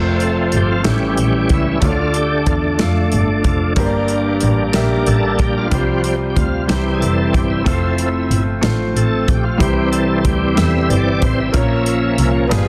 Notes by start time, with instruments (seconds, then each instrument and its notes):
Already playing: double bass F1, tonewheel organ F3 A3 C4, french horn section F3 A3 C4 F4, grand piano A3 C4 F4 A4 C5
0.20 tonewheel organ A4, closed hi-hat
0.52 double bass G1, closed hi-hat
0.57 tonewheel organ G4
0.71 tonewheel organ F4
0.83 double bass A1, grand piano A2 A3 C#4 E4 G4 A4, tonewheel organ E3 G3, french horn section G3 C#4 E4, snare, closed hi-hat
0.87 tonewheel organ C#4 G4
1.17 double bass A#1, tonewheel organ G4, closed hi-hat
1.49 double bass C#2, kick, closed hi-hat
1.54 tonewheel organ E4
1.80 double bass D2, grand piano D3 A3 D4 F4 A4 C#5, french horn section D3 D4 F4, tonewheel organ D3 A3, kick, closed hi-hat
1.84 tonewheel organ D4 F4
1.90 grand piano D5
2.14 tonewheel organ G4, closed hi-hat
2.46 double bass E2, tonewheel organ F4, kick, closed hi-hat
2.64 tonewheel organ D4
2.78 double bass F2, grand piano A3 D4 F4 A4 F5, snare, closed hi-hat
3.12 double bass G1, closed hi-hat
3.44 double bass F1, tonewheel organ F3 A3 D4, kick, closed hi-hat
3.76 double bass G1, grand piano G2 A#3 D4 G4 A#4 C5, tonewheel organ G3 A#3 D4, french horn section G3 A#3 G4, kick, closed hi-hat
3.86 grand piano D5
4.08 closed hi-hat
4.40 double bass A1, closed hi-hat
4.73 double bass A#1, grand piano A#3 D4 G4 A#4 E5, snare, closed hi-hat
5.06 double bass A1, tonewheel organ A4, closed hi-hat
5.39 double bass A#1, tonewheel organ G4, kick, closed hi-hat
5.58 tonewheel organ F4
5.71 double bass C2, grand piano C3 G3 C4 F4 G4, french horn section F3 C4 F4, tonewheel organ F3 G3 C4 G4, kick, closed hi-hat
5.75 grand piano C5
5.99 tonewheel organ F#4
6.04 tonewheel organ G4, closed hi-hat
6.30 tonewheel organ G4
6.36 double bass D2, tonewheel organ F4, kick, closed hi-hat
6.67 double bass C2, grand piano C3 G3 C4 E4 G4 C5, tonewheel organ E3 G3 C4 G4, french horn section E3 E4, snare, closed hi-hat
6.95 tonewheel organ G#4
7.01 double bass F1, tonewheel organ A4, closed hi-hat
7.33 double bass G1, tonewheel organ G4, kick, closed hi-hat
7.50 tonewheel organ E4
7.64 double bass F1, tonewheel organ F3 A3 C4, french horn section F3 A3 A4, grand piano A3 C4 F4 A4 C5, kick, closed hi-hat
7.98 closed hi-hat
8.31 double bass G1, closed hi-hat
8.61 double bass A1, grand piano A3 C4 F4 A4 C5, snare, closed hi-hat
8.95 double bass A1, tonewheel organ A4, closed hi-hat
9.28 double bass A#1, tonewheel organ G4, kick, closed hi-hat
9.44 tonewheel organ F4
9.57 double bass C2, grand piano C3 G3 C4 E4 G4 C5, tonewheel organ E3 G3 C4 G4, french horn section E3 G3 E4, kick, closed hi-hat
9.92 tonewheel organ A4, closed hi-hat
10.18 tonewheel organ A4
10.25 double bass D2, tonewheel organ G4, kick, closed hi-hat
10.55 double bass E2, grand piano G3 C4 E4 G4 A4, tonewheel organ E5, snare, closed hi-hat
10.83 tonewheel organ E5
10.90 double bass G1, tonewheel organ D5, closed hi-hat
11.22 double bass A1, tonewheel organ C5, kick, closed hi-hat
11.40 tonewheel organ E5
11.52 double bass A#1, grand piano A#2 A#3 C#4 F4 A#4 C#5, french horn section F3 A#3 C#4 F4, tonewheel organ F3 A#3 C#4, kick, closed hi-hat
11.86 closed hi-hat
12.18 double bass C2, closed hi-hat
12.47 grand piano G2 B3 D4 F4 G4 G#4, tonewheel organ F3 G#3, french horn section G#3 B3 D4, closed hi-hat
12.52 double bass G1, tonewheel organ B3, snare